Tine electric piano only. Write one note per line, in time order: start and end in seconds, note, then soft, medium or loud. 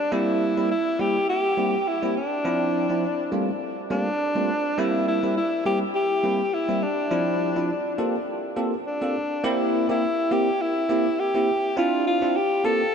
0.12 0.53 G3 medium
0.12 0.53 A#3 medium
0.12 0.53 C4 medium
0.12 0.53 E4 loud
0.57 0.70 G3 medium
0.57 0.70 A#3 medium
0.57 0.70 C4 medium
0.57 0.71 E4 medium
0.99 1.15 G3 medium
0.99 1.15 A#3 medium
0.99 1.16 C4 medium
0.99 1.16 E4 medium
1.57 1.74 G3 medium
1.57 1.74 A#3 medium
1.57 1.74 C4 medium
1.57 1.74 E4 medium
2.02 2.16 G3 medium
2.02 2.16 A#3 medium
2.02 2.16 C4 medium
2.02 2.16 E4 medium
2.44 2.86 F3 medium
2.44 2.86 C4 medium
2.44 2.86 D4 medium
2.44 2.86 E4 loud
2.89 3.03 F3 medium
2.89 3.03 C4 medium
2.89 3.03 D4 medium
2.89 3.03 E4 medium
3.32 3.48 G3 medium
3.32 3.48 A3 medium
3.32 3.48 A#3 medium
3.32 3.48 C4 medium
3.32 3.49 F4 medium
3.90 4.07 G3 medium
3.90 4.07 A3 medium
3.90 4.07 A#3 medium
3.90 4.07 C4 medium
3.90 4.07 F4 medium
4.35 4.49 G3 medium
4.35 4.49 A3 medium
4.35 4.49 A#3 medium
4.35 4.49 C4 medium
4.35 4.49 F4 medium
4.78 5.19 G3 medium
4.78 5.19 A#3 medium
4.78 5.19 C4 medium
4.78 5.19 E4 loud
5.23 5.36 G3 medium
5.23 5.36 A#3 medium
5.23 5.37 C4 medium
5.23 5.37 E4 medium
5.65 5.81 G3 medium
5.65 5.82 A#3 medium
5.65 5.82 C4 medium
5.65 5.82 E4 medium
6.23 6.40 G3 medium
6.23 6.40 A#3 medium
6.23 6.40 C4 medium
6.23 6.40 E4 medium
6.68 6.82 G3 medium
6.68 6.82 A#3 medium
6.68 6.82 C4 medium
6.68 6.82 E4 medium
7.11 7.52 F3 medium
7.11 7.52 C4 medium
7.11 7.52 D4 medium
7.11 7.52 E4 loud
7.56 7.69 F3 medium
7.56 7.69 C4 medium
7.56 7.69 D4 medium
7.56 7.70 E4 medium
7.98 8.14 A#3 medium
7.98 8.14 C4 medium
7.98 8.15 F4 medium
7.98 8.15 G4 medium
7.98 8.15 A4 medium
8.56 8.73 A#3 medium
8.56 8.73 C4 medium
8.56 8.73 F4 medium
8.56 8.73 G4 medium
8.56 8.73 A4 medium
9.01 9.15 A#3 medium
9.01 9.15 C4 medium
9.01 9.15 F4 medium
9.01 9.15 G4 medium
9.01 9.15 A4 medium
9.44 9.85 A#3 loud
9.44 9.85 C4 medium
9.44 9.85 E4 medium
9.44 9.85 G4 loud
9.89 10.02 A#3 medium
9.89 10.02 C4 medium
9.89 10.03 E4 medium
9.89 10.03 G4 medium
10.31 10.47 A#3 medium
10.31 10.48 C4 medium
10.31 10.48 E4 medium
10.31 10.48 G4 medium
10.89 11.06 A#3 medium
10.89 11.06 C4 medium
10.89 11.06 E4 medium
10.89 11.06 G4 medium
11.34 11.48 A#3 medium
11.34 11.48 C4 medium
11.34 11.48 E4 medium
11.34 11.48 G4 medium
11.77 12.18 C4 medium
11.77 12.18 D4 medium
11.77 12.18 E4 medium
11.77 12.18 F4 loud
12.22 12.35 C4 medium
12.22 12.35 D4 medium
12.22 12.36 E4 medium
12.22 12.36 F4 medium
12.64 12.80 A#3 medium
12.64 12.81 C4 medium
12.64 12.81 F4 medium
12.64 12.81 G4 medium
12.64 12.81 A4 medium